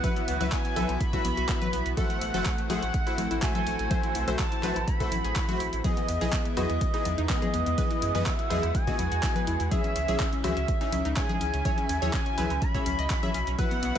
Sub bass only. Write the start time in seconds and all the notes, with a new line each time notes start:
0.28 C#2
0.41 C#2
0.76 B1
0.89 B1
1.25 B1
1.37 B1
1.73 B1
1.86 B1
2.21 A1
2.34 F#1
2.70 A1
2.83 A1
3.18 A1
3.31 A1
3.67 A1
3.79 A1
4.15 B1
4.28 B1
4.63 A1
4.76 A1
5.12 A1
5.24 A1
5.60 A1
5.73 A1
6.09 E2
6.21 B1
6.57 E2
6.70 E2
7.05 E2
7.18 E2
7.54 E2
7.66 E2
8.02 F#2
8.15 F#2
8.51 E2
8.63 E2
8.99 E2
9.12 E2
9.47 E2
9.60 E2
9.96 C#2
10.08 B1
10.44 C#2
10.57 C#2
10.92 C#2
11.05 C#2
11.41 C#2
11.54 C#2
11.89 D#2
12.02 D#2
12.38 C#2
12.50 C#2
12.86 C#2
12.99 C#2
13.34 B1
13.47 B1
13.83 B1